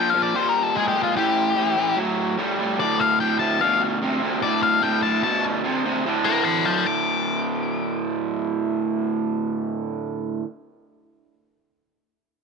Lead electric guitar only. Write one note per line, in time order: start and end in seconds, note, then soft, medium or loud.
0.10 0.22 F5 medium
0.22 0.36 D5 medium
0.36 0.49 C5 loud
0.49 0.63 A#4 loud
0.63 0.76 A4 medium
0.77 0.88 G#4 medium
0.88 1.02 G4 medium
1.03 1.16 F4 medium
1.17 1.96 G4 medium
2.80 2.99 D5 loud
3.00 3.20 F5 medium
3.20 3.39 G5 medium
3.39 3.60 A5 medium
3.61 3.81 F5 loud
4.42 4.62 D5 medium
4.63 4.83 F5 medium
4.83 5.02 G5 medium
5.03 5.22 A5 medium
5.23 5.43 A5 loud
6.24 6.45 F5 medium
6.24 6.44 D6 medium
6.44 6.64 A5 medium
6.44 6.65 C6 medium
6.65 6.85 F5 medium
6.65 6.86 A5 medium
6.87 10.07 D6 loud